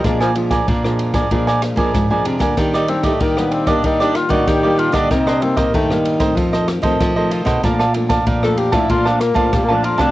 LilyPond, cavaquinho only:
\new Staff \with { instrumentName = "Cavaquinho" } { \time 4/4 \key bes \major \tempo 4 = 95 <d' bes' d'' aes''>16 <bes' d'' aes''>16 r16 <bes' d'' aes''>16 <d' bes' d'' aes''>8. <bes' d'' aes''>16 <d' bes' d'' aes''>16 <bes' d'' aes''>16 r16 <bes' d'' aes''>8 <bes' d'' aes''>16 <d' bes' d'' aes''>16 <bes' d'' aes''>16 | <d' g' d'' ees''>16 <g' d'' ees''>16 r16 <g' d'' ees''>16 <g' d'' ees''>8. <g' d'' ees''>16 <d' g' d'' ees''>16 <g' d'' ees''>16 r16 <g' d'' ees''>8 <g' d'' ees''>16 <d' g' d'' ees''>16 <g' d'' ees''>16 | <ees' bes' c'' ees''>16 <bes' c'' ees''>16 r16 <bes' c'' ees''>16 <ees' c'' ees''>8. <bes' c'' ees''>16 <f' a' c'' ees''>16 <a' c'' ees''>16 r16 <a' c'' ees''>8 <a' c'' ees''>16 <f' a' c'' ees''>16 <a' c'' ees''>16 | <bes' d'' f'' a''>16 <d'' f'' a''>16 r16 <d'' f'' a''>16 <bes' d'' f'' a''>8. <d'' f'' a''>16 <bes' d'' f'' a''>16 <d'' f'' a''>16 r16 <d'' f'' a''>8 <d'' f'' a''>16 <bes' d'' f'' a''>16 <d'' f'' a''>16 | }